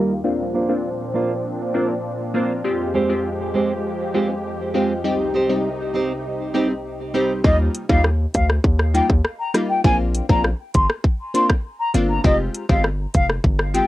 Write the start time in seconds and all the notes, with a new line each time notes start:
Already playing: D#2 D#3 G3 A#3 D#4 F4 G4 A#4
0.24 A#2 F3 A#3 C4 D4 F4
0.54 A#3 D4 F4 C5
0.69 A#3 C4 D4 F4
1.14 A#3 D4 F4 C5
1.74 A#3 C4 D4 F4 C5
1.89 muted nylon-string guitar stroke
2.34 A#3 C4 D4 F4 C5
2.64 F2 F3 G#3 C4 F4 G4
2.94 G#3 C4 G4 C5
3.09 G#3 C4 F4 G4
3.54 G#3 C4 G4 C5
4.14 G#3 C4 F4 G4 C5
4.29 muted nylon-string guitar stroke
4.74 G#3 C4 F4 G4 C5
5.04 C2 C3 G3 C4 D#4 G4
5.34 C4 D#4 G4 C5
5.49 G3 C4 D#4 G4
5.94 C4 D#4 G4 C5
6.54 G3 C4 D#4 G4 C5
6.69 muted nylon-string guitar stroke
7.14 G3 C4 D#4 G4 C5
7.44 D#2 G3 A#3 D#4 F4 D#5, kick
7.75 closed hi-hat
7.89 D#2 G3 A#3 D#4 F4 F5, kick
8.04 cross-stick
8.34 D2 F5, kick, closed hi-hat
8.50 cross-stick
8.64 D#2, kick
8.79 cross-stick
8.94 G3 A#3 D#4 F4 G5, closed hi-hat
9.10 D#2, kick
9.25 cross-stick
9.39 A#5
9.54 G3 A#3 D#4 F4, cross-stick, closed hi-hat
9.69 G5
9.84 A#1 A#3 C4 D4 F4 G#5, kick
10.15 closed hi-hat
10.29 A#1 A#3 C4 D4 F4 A#5, kick
10.44 cross-stick
10.74 G1 C6, kick, closed hi-hat
10.90 cross-stick
11.04 kick
11.34 A#3 C4 D4 F4 C6, closed hi-hat
11.50 kick, cross-stick
11.80 A#5
11.94 G1 A#3 C4 D4 F4, closed hi-hat
12.10 A#5
12.24 F1 G#3 C4 F4 G4 D#5, kick
12.54 closed hi-hat
12.69 G1 G#3 C4 F4 G4 F5, kick
12.84 cross-stick
13.14 F1 F5, kick, closed hi-hat
13.30 cross-stick
13.44 G1, kick
13.59 cross-stick
13.74 G#3 C4 F4 G4 G5, closed hi-hat